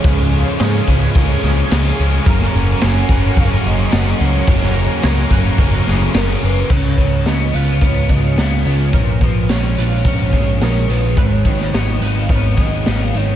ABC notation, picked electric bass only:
X:1
M:4/4
L:1/8
Q:1/4=108
K:Dbmix
V:1 name="Picked electric bass" clef=bass
D,,2 A,, D,, D,, D,, D,, D,, | G,,, G,,, G,,, G,,, G,,, G,,, G,,, D,, | G,,,2 D,, G,,, G,,, G,,, G,,, G,,, | D,, D,, D,, D,, D,, D,, D,, D,, |
B,,, B,,, B,,, B,,, B,,, B,,, B,,, B,,, | A,,, A,,, A,,, A,,, A,,, A,,, A,,, A,,, |]